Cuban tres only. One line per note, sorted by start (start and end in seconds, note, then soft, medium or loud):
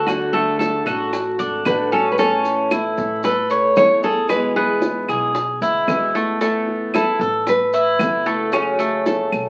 0.00 0.32 F#4 medium
0.34 0.85 A3 medium
0.86 1.38 F#4 medium
1.39 1.90 D4 medium
1.92 2.18 C#4 medium
2.19 2.70 C#4 medium
2.72 3.23 E4 medium
3.25 3.50 A4 medium
3.51 4.02 C#5 medium
4.04 4.55 G#4 medium
4.56 5.08 B3 medium
5.09 5.60 G#4 medium
5.62 6.13 E4 medium
6.15 6.40 A3 medium
6.41 6.92 A3 medium
6.94 7.20 E4 medium
7.21 7.72 A4 medium
7.74 8.25 E4 medium
8.26 8.52 A3 medium
8.53 8.79 C#4 medium
8.79 9.31 A3 medium